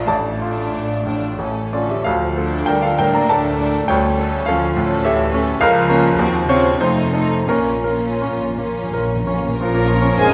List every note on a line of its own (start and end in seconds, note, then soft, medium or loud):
0.00 0.11 A#1 medium
0.00 0.11 D4 soft
0.00 0.12 F4 soft
0.00 0.12 A4 medium
0.00 0.11 F5 medium
0.07 1.36 A1 medium
0.07 0.66 A1 medium
0.07 1.38 A3 medium
0.07 1.36 D5 medium
0.07 1.36 A5 medium
0.40 1.06 A3 soft
0.40 1.05 D4 soft
0.40 0.94 F4 soft
0.40 1.06 F4 soft
0.73 1.32 A1 soft
0.73 1.26 D4 soft
1.06 1.39 A2 soft
1.06 1.39 A3 soft
1.06 1.39 D4 soft
1.06 1.39 F4 soft
1.39 2.03 A1 soft
1.39 1.98 A1 soft
1.39 1.72 A3 soft
1.39 1.72 C#4 soft
1.39 1.73 A4 soft
1.73 1.89 D3 soft
1.73 2.05 A3 soft
1.73 2.03 C#4 soft
1.73 2.05 C#4 soft
1.73 1.89 F4 soft
1.73 2.03 A4 soft
1.73 2.06 A4 soft
1.73 1.89 D5 medium
1.89 2.07 E3 soft
1.89 2.05 G4 soft
1.89 2.05 E5 soft
2.04 2.61 D2 medium
2.04 3.85 D2 medium
2.04 2.68 F3 medium
2.04 2.36 A4 medium
2.04 2.64 F5 medium
2.37 2.98 A3 soft
2.37 2.97 D4 soft
2.37 2.82 A4 soft
2.37 2.98 A4 soft
2.66 3.22 D2 medium
2.66 2.84 G3 medium
2.66 3.17 D4 soft
2.66 2.82 A#4 soft
2.66 2.81 G5 medium
2.82 2.99 F3 medium
2.82 2.98 A4 soft
2.82 2.97 F5 medium
2.98 3.48 A2 soft
2.98 3.14 G3 medium
2.98 3.59 A3 soft
2.98 3.57 D4 soft
2.98 3.58 A4 soft
2.98 3.14 A#4 medium
2.98 3.13 G5 medium
3.13 3.29 A#3 medium
3.13 3.29 D5 soft
3.13 3.29 A#5 medium
3.28 3.82 D2 medium
3.28 3.88 A3 medium
3.28 3.78 A4 soft
3.28 3.85 D5 medium
3.28 3.85 A5 medium
3.58 3.87 A3 soft
3.58 3.88 D4 soft
3.58 3.89 D4 soft
3.58 3.87 A4 soft
3.88 4.41 D2 medium
3.88 4.46 D2 medium
3.88 4.46 G3 medium
3.88 4.17 A3 medium
3.88 4.16 C#4 soft
3.88 4.17 A4 soft
3.88 4.44 C#5 medium
3.88 4.43 G5 medium
4.17 4.75 A3 medium
4.17 4.74 C#4 medium
4.17 4.75 A4 medium
4.17 4.46 A4 medium
4.46 4.98 D2 medium
4.46 5.05 F3 medium
4.46 4.94 C#4 medium
4.46 5.01 A4 medium
4.46 5.00 F5 medium
4.75 5.05 A2 medium
4.75 5.31 A3 medium
4.75 5.29 C#4 medium
4.75 5.31 A4 soft
5.04 5.54 D2 medium
5.04 5.33 E3 medium
5.04 5.32 G4 medium
5.04 5.50 A4 medium
5.04 5.31 E5 medium
5.31 5.60 A3 medium
5.31 5.59 C#4 medium
5.31 5.61 C#4 medium
5.31 5.60 A4 medium
5.60 6.11 C#2 medium
5.60 6.17 C#2 medium
5.60 6.45 F3 medium
5.60 5.88 A#4 medium
5.60 6.45 F5 medium
5.88 6.17 A#3 medium
5.88 6.18 C#4 medium
5.88 6.16 C#4 medium
5.88 6.17 F4 medium
5.88 6.16 A#4 medium
6.15 6.73 D#2 medium
6.15 6.79 D#2 medium
6.15 6.48 C4 medium
6.15 6.45 F#4 medium
6.46 6.80 C#3 medium
6.46 6.77 C4 medium
6.46 6.80 C4 medium
6.46 6.79 F#4 medium
6.46 6.77 C5 medium
6.46 6.79 C#5 medium
6.51 6.80 F4 medium
6.80 7.46 F2 medium
6.80 7.41 F2 medium
6.80 7.49 C3 medium
6.80 7.13 A3 medium
6.80 7.13 D#4 medium
6.80 7.12 D#4 soft
6.80 7.09 F4 medium
6.80 7.45 C5 medium
7.10 7.45 D#4 soft
7.10 7.46 F4 soft
7.10 7.45 A4 medium
7.14 7.48 A3 medium
7.14 7.49 D#4 medium
7.47 8.14 A#1 medium
7.47 9.56 A#2 medium
7.47 7.56 A#2 soft
7.47 9.29 A#2 medium
7.47 7.85 A#3 soft
7.47 7.85 C#4 soft
7.47 8.20 C#4 medium
7.47 7.84 F4 soft
7.47 7.83 A#4 medium
7.57 7.65 A#2 soft
7.75 7.83 A#2 soft
7.84 7.93 A#2 soft
7.84 8.58 A#3 soft
7.84 8.57 C#4 soft
7.84 8.57 F4 medium
7.84 8.44 A#4 soft
7.94 8.02 A#2 soft
8.12 8.21 A#2 soft
8.22 8.86 A#1 medium
8.22 8.29 A#2 soft
8.22 8.80 C#4 soft
8.31 8.39 A#2 soft
8.40 8.47 A#2 soft
8.49 8.55 A#2 soft
8.56 8.64 A#2 medium
8.56 9.15 A#3 soft
8.56 9.28 A#3 soft
8.56 9.25 C#4 soft
8.56 9.26 F4 soft
8.65 8.73 A#2 soft
8.74 8.82 A#2 soft
8.83 8.89 A#2 medium
8.90 8.97 A#2 medium
8.90 9.48 A#4 soft
8.95 9.54 A#1 medium
8.95 9.06 A#2 medium
9.07 9.15 A#2 medium
9.16 9.23 A#2 medium
9.24 9.31 A#2 medium
9.24 9.59 C#4 soft
9.24 9.60 C#4 soft
9.24 9.59 F4 soft
9.30 9.39 A#2 medium
9.30 9.60 A#3 soft
9.40 9.47 A#2 medium
9.49 9.56 A#2 medium
9.58 10.15 A#1 medium
9.58 10.14 A#2 medium
9.58 10.17 A#2 medium
9.58 10.34 F3 medium
9.58 10.34 C#4 medium
9.58 10.15 C#4 medium
9.58 10.15 F4 medium
9.58 10.13 A#4 medium
9.58 10.34 A#4 medium
9.58 10.34 C#5 medium
9.75 9.98 A#3 soft
9.87 10.12 F3 medium
10.02 10.26 C#4 medium
10.16 10.34 F#1 medium
10.16 10.34 F#2 medium
10.16 10.34 A#4 medium
10.16 10.34 C5 medium
10.16 10.34 G#5 medium
10.20 10.34 G#3 medium
10.20 10.34 C4 medium
10.20 10.34 D#4 medium